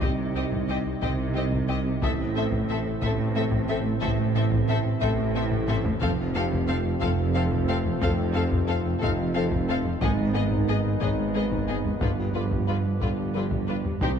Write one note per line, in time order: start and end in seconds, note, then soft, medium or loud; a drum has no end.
0.00 0.12 C2 medium
0.00 0.90 C2 medium
0.00 0.91 C2 medium
0.00 1.98 C3 soft
0.00 0.90 C3 medium
0.00 1.98 G3 medium
0.00 1.98 G3 soft
0.00 1.98 C4 medium
0.00 1.98 C4 soft
0.00 0.10 C4 medium
0.00 1.98 D#4 soft
0.00 1.98 G4 medium
0.00 0.10 G4 medium
0.00 1.98 D#5 medium
0.00 0.10 D#5 soft
0.00 1.32 D6 medium
0.00 taiko medium
0.18 0.28 C3 medium
0.35 0.45 C2 medium
0.35 0.44 C4 soft
0.35 0.44 G4 soft
0.35 0.44 D#5 soft
0.52 0.62 C2 medium
0.52 taiko medium
0.69 0.79 C2 medium
0.69 0.77 C4 soft
0.69 0.77 G4 soft
0.69 0.77 D#5 soft
0.85 0.95 C2 medium
1.02 1.12 C2 medium
1.02 1.90 C2 medium
1.02 1.91 C2 medium
1.02 1.90 C3 medium
1.02 1.10 C4 soft
1.02 1.10 G4 soft
1.02 1.11 D#5 soft
1.02 taiko medium
1.19 1.29 C3 medium
1.35 1.46 C3 medium
1.35 1.43 C4 medium
1.35 1.43 G4 soft
1.35 1.44 D#5 soft
1.52 1.62 C2 medium
1.52 taiko medium
1.69 1.79 C2 medium
1.69 1.77 C4 soft
1.69 1.77 G4 medium
1.69 1.78 D#5 medium
1.86 1.96 C3 medium
2.02 2.91 A1 medium
2.02 2.12 A2 medium
2.02 2.91 A2 medium
2.02 5.85 C3 medium
2.02 6.02 E3 medium
2.02 5.85 A3 medium
2.02 2.10 C4 medium
2.02 5.86 C4 medium
2.02 5.98 C4 medium
2.02 5.86 E4 medium
2.02 3.99 E4 soft
2.02 6.01 A4 medium
2.02 2.11 A4 medium
2.02 6.01 C5 medium
2.02 2.11 E5 medium
2.02 3.99 D#6 soft
2.02 taiko medium
2.19 2.29 A3 medium
2.36 2.46 A2 medium
2.36 2.44 C4 medium
2.36 4.32 A4 medium
2.36 2.45 A4 soft
2.36 2.44 E5 medium
2.52 2.62 A2 medium
2.52 taiko medium
2.69 2.79 A2 medium
2.69 2.78 C4 medium
2.69 2.78 A4 medium
2.69 2.78 E5 soft
2.85 2.95 A2 medium
3.02 3.90 A1 medium
3.02 3.91 A1 medium
3.02 3.12 A2 medium
3.02 3.91 A2 medium
3.02 3.11 C4 medium
3.02 3.12 A4 medium
3.02 3.10 E5 medium
3.02 taiko medium
3.19 3.29 A3 medium
3.36 3.46 A3 medium
3.36 3.44 C4 medium
3.36 3.45 A4 medium
3.36 3.44 E5 medium
3.52 3.62 A2 medium
3.52 taiko medium
3.69 3.79 A2 medium
3.69 3.77 C4 medium
3.69 3.77 A4 medium
3.69 3.77 E5 medium
3.85 3.95 A3 medium
4.02 4.90 A1 medium
4.02 4.91 A1 medium
4.02 4.90 A2 medium
4.02 4.12 A2 medium
4.02 4.11 C4 medium
4.02 4.10 A4 medium
4.02 4.10 E5 medium
4.02 taiko medium
4.19 4.29 A3 medium
4.35 4.46 A2 medium
4.35 4.43 C4 medium
4.35 4.44 A4 medium
4.35 4.44 E5 medium
4.52 4.62 A2 medium
4.52 taiko medium
4.69 4.79 A2 medium
4.69 4.77 C4 medium
4.69 4.78 A4 medium
4.69 4.77 E5 medium
4.85 4.95 A2 medium
5.01 5.90 A1 medium
5.01 5.12 A2 medium
5.01 5.91 A2 medium
5.01 5.10 C4 medium
5.01 5.11 A4 medium
5.01 6.99 A4 medium
5.01 5.09 E5 medium
5.01 taiko medium
5.19 5.29 A3 medium
5.35 5.45 A3 medium
5.35 5.44 C4 medium
5.35 5.44 A4 medium
5.35 5.44 E5 medium
5.52 5.62 A2 medium
5.52 taiko low-mid medium
5.68 5.79 A2 medium
5.68 5.77 C4 medium
5.68 5.76 A4 medium
5.68 5.77 E5 medium
5.68 taiko low-mid loud
5.85 5.96 A3 medium
5.85 taiko low loud
6.01 6.90 F1 medium
6.01 6.91 F1 medium
6.01 6.12 F2 medium
6.01 6.90 F2 medium
6.01 9.98 C3 medium
6.01 10.02 F3 medium
6.01 9.98 A3 medium
6.01 9.98 C4 medium
6.01 6.10 C4 medium
6.01 9.99 C4 medium
6.01 9.98 F4 medium
6.01 6.09 A4 medium
6.01 9.98 A4 medium
6.01 9.98 C5 medium
6.01 6.09 F5 medium
6.01 taiko medium
6.19 6.29 F3 medium
6.34 6.45 F2 medium
6.34 6.44 C4 medium
6.34 8.31 G4 medium
6.34 6.42 A4 medium
6.34 6.43 F5 medium
6.52 6.62 F2 medium
6.52 taiko medium
6.68 6.79 F2 medium
6.68 6.76 C4 medium
6.68 6.76 A4 medium
6.68 6.76 F5 medium
6.86 6.96 F2 medium
7.01 7.90 F1 medium
7.01 7.90 F2 medium
7.01 7.12 F2 medium
7.01 7.09 C4 medium
7.01 7.10 A4 medium
7.01 7.09 F5 medium
7.01 taiko medium
7.20 7.29 F3 medium
7.35 7.46 F3 medium
7.35 9.32 A3 medium
7.35 7.43 C4 medium
7.35 7.44 A4 medium
7.35 9.32 A4 medium
7.35 7.43 F5 medium
7.52 7.63 F2 medium
7.52 taiko medium
7.68 7.79 F2 medium
7.68 7.77 C4 medium
7.68 7.77 A4 medium
7.68 7.76 F5 medium
7.85 7.96 F3 medium
7.85 taiko low medium
8.01 8.90 F1 medium
8.01 8.91 F1 medium
8.01 8.90 F2 medium
8.01 8.13 F2 medium
8.01 8.09 C4 medium
8.01 8.10 A4 medium
8.01 8.10 F5 medium
8.01 taiko medium
8.19 8.29 F3 medium
8.34 8.46 F2 medium
8.34 8.42 C4 medium
8.34 8.42 A4 medium
8.34 8.43 F5 medium
8.52 8.62 F2 medium
8.52 taiko medium
8.67 8.79 F2 medium
8.67 8.76 C4 medium
8.67 8.75 A4 medium
8.67 8.77 F5 medium
8.86 8.96 F2 medium
9.01 9.90 F1 medium
9.01 9.90 F2 medium
9.01 9.13 F2 loud
9.01 9.10 C4 medium
9.01 10.98 D#4 soft
9.01 9.09 A4 medium
9.01 10.98 D#5 medium
9.01 9.11 F5 medium
9.01 taiko medium
9.19 9.29 F3 medium
9.35 9.46 F3 medium
9.35 9.43 C4 medium
9.35 9.43 A4 medium
9.35 9.44 F5 medium
9.52 9.63 F2 medium
9.52 taiko medium
9.68 9.79 F2 medium
9.68 9.77 C4 medium
9.68 9.76 A4 medium
9.68 9.78 F5 medium
9.85 9.96 F3 medium
9.85 taiko low medium
10.01 10.90 G#1 medium
10.01 10.90 G#2 medium
10.01 10.12 G#2 medium
10.01 11.84 D#3 medium
10.01 12.02 D#3 medium
10.01 11.84 G#3 medium
10.01 13.70 B3 medium
10.01 10.11 B3 medium
10.01 12.02 D#4 medium
10.01 11.98 D#4 medium
10.01 12.02 G#4 medium
10.01 10.10 G#4 medium
10.01 14.02 B4 medium
10.01 10.10 D#5 medium
10.01 taiko loud
10.20 10.29 G#3 medium
10.34 10.46 G#2 medium
10.34 10.43 B3 medium
10.34 10.42 G#4 medium
10.34 10.43 D#5 medium
10.52 10.62 G#2 loud
10.52 taiko medium
10.68 10.79 G#2 medium
10.68 10.76 B3 soft
10.68 10.76 G#4 medium
10.68 10.77 D#5 medium
10.86 10.96 G#2 medium
11.00 11.90 G#1 medium
11.00 11.90 G#2 medium
11.00 11.12 G#2 loud
11.00 11.10 B3 medium
11.00 11.08 G#4 medium
11.00 12.98 C#5 medium
11.00 11.09 D#5 medium
11.00 taiko medium
11.20 11.29 G#3 medium
11.35 11.46 G#3 medium
11.35 11.44 B3 medium
11.35 11.43 G#4 soft
11.35 11.44 D#5 soft
11.52 11.62 G#2 medium
11.52 taiko medium
11.68 11.79 G#2 medium
11.68 11.76 B3 soft
11.68 11.76 G#4 soft
11.68 11.77 D#5 soft
11.68 13.65 D#5 soft
11.85 11.96 G#3 medium
11.85 taiko low soft
12.01 12.90 G1 medium
12.01 12.90 G2 medium
12.01 12.12 G2 medium
12.01 14.02 D3 medium
12.01 12.09 D3 soft
12.01 13.67 D3 soft
12.01 14.02 F3 medium
12.01 13.66 G3 soft
12.01 13.66 F4 soft
12.01 12.10 F4 medium
12.01 14.01 G4 medium
12.01 12.10 B4 soft
12.01 taiko medium
12.19 12.29 G3 medium
12.35 12.46 G2 medium
12.35 12.44 D3 soft
12.35 12.43 F4 soft
12.35 12.43 B4 soft
12.51 12.63 G2 medium
12.51 taiko medium
12.68 12.79 G2 medium
12.68 12.77 D3 soft
12.68 12.76 F4 soft
12.68 12.76 B4 soft
12.87 12.96 G2 medium
13.01 13.90 G1 medium
13.01 13.90 G2 medium
13.01 13.13 G2 medium
13.01 13.10 D3 soft
13.01 13.11 F4 soft
13.01 13.09 B4 soft
13.01 taiko medium
13.19 13.29 G3 medium
13.35 13.44 D3 soft
13.35 13.46 G3 medium
13.35 13.45 F4 soft
13.35 13.43 B4 soft
13.51 13.63 G2 medium
13.51 taiko medium
13.68 13.79 G2 medium
13.68 13.76 D4 soft
13.68 13.77 F4 soft
13.68 13.76 B4 soft
13.85 13.96 G3 medium
13.85 taiko low soft
14.01 14.19 C2 medium
14.01 14.13 C2 medium
14.01 14.19 D#3 medium
14.01 14.19 G3 medium
14.01 14.19 C4 medium
14.01 14.11 D#4 medium
14.01 14.19 D#4 medium
14.01 14.10 G4 medium
14.01 14.19 G4 medium
14.01 14.10 C5 medium
14.01 14.19 C5 medium
14.01 taiko medium